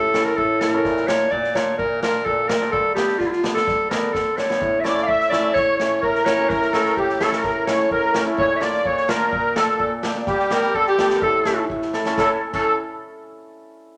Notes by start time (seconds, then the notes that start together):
Already playing: A2 A4
0.14 C#4 E4 A4, snare
0.24 A#4, snare
0.37 A2 A4, kick
0.60 E4 A4 A#4, snare
0.73 C#4 E4 A4
0.85 A#2, kick, snare
0.97 snare
1.07 D4 F4 A#4 C#5, snare
1.20 snare
1.30 A#2 D5, kick
1.44 snare
1.55 D4 F4 A#4 C#5, snare
1.78 A#2 A#4, kick
2.02 D4 F4 A#4, snare
2.14 snare
2.25 A#2 A4, kick
2.48 F4 A#4, snare
2.61 D4 F4 G4, snare
2.71 G3 A4, kick
2.95 B3 D4 G4, snare
3.09 snare
3.18 D3 F4, kick, snare
3.26 E4
3.30 F4, snare
3.43 B3 D4 G4, snare
3.54 A4, snare
3.67 G3, kick, snare
3.90 B3 D4 G4 A#4, snare
4.13 D3 A4, kick, snare
4.37 D4 G4 C#5, snare
4.49 B3 D4 G4, snare
4.60 A2, kick
4.80 A3 D5 E5
4.84 C#4 E4 D5, snare
4.97 snare
5.03 F5
5.07 A2 E5, kick
5.20 snare
5.30 A3 C#4 E4 D5, snare
5.53 A2 C#5, kick, snare
5.77 A3 C#4 G4 C#5, snare
6.02 A2 A#4, kick
6.15 snare
6.25 C#4 E4 C#5, snare
6.38 A3 C#4 G4
6.49 A2 A#4, kick, snare
6.62 snare
6.73 A3 C#4 E4 A4, snare
6.85 snare
6.96 A2 G4, kick
7.09 snare
7.20 A3 C#4 E4 A4, snare
7.31 A#4, snare
7.44 A2, kick, snare
7.67 A3 C#4 E4 C#5, snare
7.80 snare
7.91 A2 A#4, kick
8.14 C#4 G4, snare
8.25 A3 C#4 E4
8.37 A#2 C#5, kick
8.56 E5
8.60 A#3 D4 F4 D5, snare
8.74 snare
8.85 A#2 C#5, kick
8.97 snare
9.08 A#3 D4 F4 A#4, snare
9.31 A#2, kick
9.56 A#3 D4 F4 A4, snare
9.79 A#2, kick
10.03 D4 G4, snare
10.15 A#3 D4 G4, snare
10.26 G3 G4, kick, snare
10.39 snare
10.51 B3 D4 G4 A#4, snare
10.63 snare
10.74 D3 A4, kick
10.86 G4, snare
10.99 B3 D4 A4, snare
11.10 snare
11.15 A#4
11.20 A2 A4, kick
11.45 C#4 E4 A4, snare
11.70 A2, kick
11.82 snare
11.93 E4 A4, snare
12.06 C#4 E4 A4, snare
12.18 C#4 E4 A4, kick, snare
12.53 C#4 E4 A4, kick, crash